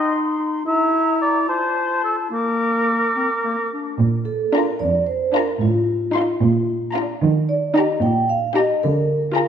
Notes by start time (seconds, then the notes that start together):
Already playing: D#4 D#5 C6
0.65 E4 E5 A#5
1.21 D5
1.48 F4 C5 A5
2.04 A4
2.30 A#3 A#4 D6
3.16 C4
3.44 A#3
3.72 D4
3.99 A#2
4.25 A4
4.54 D4 F4 A#4 A#5
4.79 F2 D5
5.07 C5
5.33 D4 F4 A#4 A#5
5.61 A2 F4
6.14 D#4 F4 C6
6.42 A#2
6.95 D4 F4 A#5
7.22 D#3
7.49 D5
7.75 D#4 G4 D#5 A#5
8.02 A#2 G5
8.29 F5
8.55 D#4 G4 D#5 A#5
8.83 D3 A#4
9.35 F4 G#4 A#5